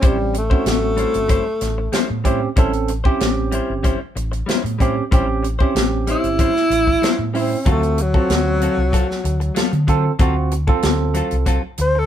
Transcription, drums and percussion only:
0.02 kick, closed hi-hat
0.34 closed hi-hat
0.51 kick
0.66 snare, closed hi-hat
0.97 closed hi-hat
1.14 closed hi-hat
1.29 kick, closed hi-hat
1.61 snare, closed hi-hat
1.93 snare, closed hi-hat
2.25 kick, closed hi-hat
2.57 kick, closed hi-hat
2.73 closed hi-hat
2.88 closed hi-hat
3.05 kick
3.20 snare, closed hi-hat
3.52 closed hi-hat
3.84 kick, closed hi-hat
4.17 closed hi-hat
4.33 closed hi-hat
4.49 snare, closed hi-hat
4.66 closed hi-hat
4.80 kick, closed hi-hat
5.12 kick, closed hi-hat
5.44 closed hi-hat
5.60 kick
5.76 snare, closed hi-hat
6.07 closed hi-hat
6.24 closed hi-hat
6.39 kick, closed hi-hat
6.56 snare
6.71 closed hi-hat
6.87 kick
7.03 snare, closed hi-hat
7.35 open hi-hat
7.66 kick, closed hi-hat
7.83 closed hi-hat
7.98 closed hi-hat
8.14 kick
8.30 snare, closed hi-hat
8.61 closed hi-hat
8.93 kick, closed hi-hat
9.11 snare
9.25 closed hi-hat
9.41 closed hi-hat
9.56 snare, closed hi-hat
9.73 closed hi-hat
9.88 kick, closed hi-hat
10.19 kick, closed hi-hat
10.52 closed hi-hat
10.68 kick
10.83 snare, closed hi-hat
11.15 closed hi-hat
11.31 closed hi-hat
11.46 kick, closed hi-hat
11.78 closed hi-hat

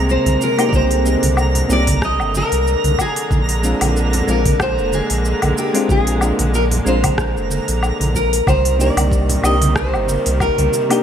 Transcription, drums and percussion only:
0.09 cabasa
0.26 open hi-hat, high conga, cabasa
0.42 cabasa
0.59 open hi-hat, cabasa, low woodblock
0.73 kick, high conga, cabasa
0.91 open hi-hat, cabasa
1.06 cabasa
1.23 open hi-hat, high conga, cabasa
1.37 cabasa, low woodblock
1.55 open hi-hat, low conga, cabasa
1.70 cabasa
1.87 kick, open hi-hat, high conga, cabasa
2.02 kick, cross-stick, cabasa
2.20 cabasa, low woodblock
2.34 high conga, cabasa
2.52 open hi-hat, cabasa
2.67 cabasa
2.84 open hi-hat, high conga, cabasa
2.99 kick, cabasa, low woodblock
3.16 open hi-hat, cabasa
3.31 kick, high conga, cabasa
3.49 open hi-hat, cabasa
3.64 cabasa
3.81 open hi-hat, high conga, cabasa, low woodblock
3.96 cabasa
4.13 open hi-hat, low conga, cabasa
4.28 cabasa
4.46 kick, open hi-hat, high conga, cabasa
4.60 kick, cross-stick, cabasa, low woodblock
4.79 cabasa
4.92 high conga, cabasa
5.10 open hi-hat, cabasa
5.25 cabasa
5.42 open hi-hat, high conga, cabasa, low woodblock
5.58 cabasa
5.75 open hi-hat, cabasa
5.89 kick, high conga, cabasa
6.07 open hi-hat, cabasa
6.21 cabasa, low woodblock
6.39 open hi-hat, high conga, cabasa
6.54 cabasa
6.71 open hi-hat, low conga, cabasa
6.87 cabasa
7.03 kick, open hi-hat, high conga, cabasa, low woodblock
7.18 kick, cross-stick, cabasa
7.37 cabasa
7.50 high conga, cabasa
7.68 open hi-hat, cabasa
7.83 cabasa, low woodblock
8.00 open hi-hat, high conga, cabasa
8.15 kick, cabasa
8.33 open hi-hat, cabasa
8.47 kick, high conga, cabasa, low woodblock
8.65 open hi-hat, cabasa
8.80 cabasa
8.97 open hi-hat, high conga, cabasa, low woodblock
9.12 kick, cabasa
9.29 open hi-hat, low conga, cabasa
9.44 cabasa, low woodblock
9.62 open hi-hat, high conga, cabasa
9.76 kick, cross-stick, cabasa
9.94 cabasa, low woodblock
10.08 high conga, cabasa
10.26 open hi-hat, cabasa
10.40 kick, cabasa, low woodblock
10.58 open hi-hat, high conga, cabasa
10.74 cabasa
10.91 open hi-hat, cabasa, low woodblock

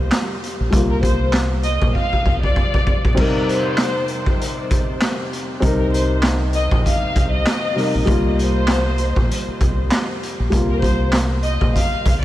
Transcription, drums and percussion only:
0.11 snare, clap, closed hi-hat
0.44 closed hi-hat
0.73 kick, closed hi-hat
1.03 kick, closed hi-hat
1.33 snare, clap, closed hi-hat
1.63 closed hi-hat
1.82 kick
1.95 kick
2.13 kick
2.26 kick
2.43 kick
2.56 kick
2.74 kick
2.87 kick
3.05 kick
3.17 kick, crash
3.49 closed hi-hat
3.78 snare, clap, closed hi-hat
4.08 closed hi-hat
4.26 kick
4.42 closed hi-hat
4.71 kick, closed hi-hat
5.01 snare, clap, closed hi-hat
5.33 closed hi-hat
5.62 kick, closed hi-hat
5.94 closed hi-hat
6.22 snare, clap, closed hi-hat
6.53 closed hi-hat
6.71 kick
6.86 kick, closed hi-hat
7.16 kick, closed hi-hat
7.46 snare, clap, closed hi-hat
7.77 snare, open hi-hat
8.07 kick, closed hi-hat
8.39 closed hi-hat
8.67 snare, clap, closed hi-hat
8.98 closed hi-hat
9.16 kick
9.31 closed hi-hat
9.61 kick, closed hi-hat
9.91 snare, clap, closed hi-hat
10.23 closed hi-hat
10.52 kick, closed hi-hat
10.82 kick, closed hi-hat
11.12 snare, clap, closed hi-hat
11.43 closed hi-hat
11.61 kick
11.76 kick, closed hi-hat
12.06 kick, closed hi-hat

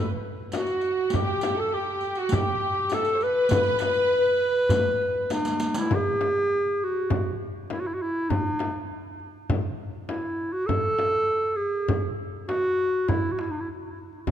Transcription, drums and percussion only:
0.52 riq, darbuka tek, frame drum
0.67 riq
0.71 darbuka ka
0.81 riq
1.10 riq, frame drum
1.15 darbuka dum
1.41 riq, darbuka tek, frame drum
1.60 darbuka ka
2.01 riq
2.05 darbuka ka
2.15 riq
2.29 riq, frame drum
2.33 darbuka dum
2.90 riq, darbuka tek, frame drum
3.05 riq, darbuka ka
3.21 riq
3.49 riq, frame drum, darbuka dum
3.63 riq, darbuka ka
3.79 riq, darbuka tek, frame drum
3.94 riq
4.41 darbuka ka
4.69 riq, darbuka dum, frame drum
5.30 riq, darbuka tek, frame drum
5.45 riq, darbuka ka
5.60 riq, darbuka tek
5.74 riq, darbuka ka
5.91 frame drum, darbuka dum
6.21 darbuka tek, frame drum
6.82 darbuka ka
7.10 frame drum, darbuka dum
7.70 darbuka tek, frame drum
8.30 frame drum, darbuka dum
8.59 darbuka tek, frame drum
9.20 darbuka ka
9.50 darbuka dum, frame drum
10.09 darbuka tek, frame drum
10.69 frame drum, darbuka dum
10.99 darbuka tek, frame drum
11.60 darbuka ka
11.88 frame drum, darbuka dum
12.49 darbuka tek, frame drum
13.08 frame drum, darbuka dum
13.25 darbuka ka
13.39 darbuka tek
13.53 darbuka ka
13.99 darbuka ka
14.13 darbuka ka
14.27 frame drum, darbuka dum

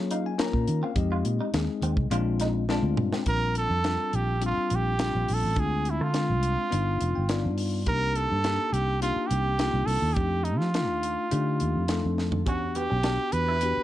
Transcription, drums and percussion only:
0.11 closed hi-hat
0.39 snare, closed hi-hat
0.53 kick
0.68 closed hi-hat
0.96 kick, closed hi-hat
1.25 closed hi-hat
1.54 snare, closed hi-hat
1.82 closed hi-hat
1.97 kick
2.11 closed hi-hat
2.40 snare, closed hi-hat
2.69 snare
2.97 mid tom
3.13 snare
3.26 kick, closed hi-hat
3.55 closed hi-hat
3.84 snare, closed hi-hat
4.13 closed hi-hat
4.42 closed hi-hat
4.70 closed hi-hat
4.99 snare, closed hi-hat
5.28 open hi-hat
5.56 kick, closed hi-hat
5.85 closed hi-hat
6.14 snare, closed hi-hat
6.43 closed hi-hat
6.72 closed hi-hat
7.01 closed hi-hat
7.29 snare, closed hi-hat
7.58 open hi-hat
7.86 kick, closed hi-hat
8.15 closed hi-hat
8.44 snare, closed hi-hat
8.74 closed hi-hat
9.02 closed hi-hat
9.31 closed hi-hat
9.59 snare, closed hi-hat
9.88 open hi-hat
10.16 kick, closed hi-hat
10.45 closed hi-hat
10.61 snare
10.74 snare, closed hi-hat
11.03 closed hi-hat
11.31 closed hi-hat
11.60 closed hi-hat
11.88 snare, closed hi-hat
12.18 snare
12.32 floor tom
12.46 kick, closed hi-hat
12.75 closed hi-hat
13.03 snare, closed hi-hat
13.32 closed hi-hat
13.61 closed hi-hat

